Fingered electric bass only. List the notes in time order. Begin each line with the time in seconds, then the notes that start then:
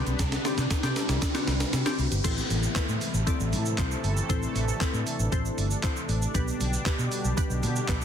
0.07 B1
0.19 C2
0.58 C3
0.71 muted fingered electric bass stroke
0.83 C3
1.09 C2
1.48 C2
1.73 C3
1.99 C2
2.12 G1
2.25 A1
2.50 A1
2.76 muted fingered electric bass stroke
2.89 A2
3.14 A1
3.40 A1
3.53 A2
3.79 C2
4.04 G1
4.30 A1
4.55 A1
4.81 muted fingered electric bass stroke
4.94 A2
5.19 A1
5.58 G1
6.09 A1
6.35 B1
6.61 B1
6.86 muted fingered electric bass stroke
6.99 B2
7.25 B1
7.50 B1
7.63 B2
7.89 B1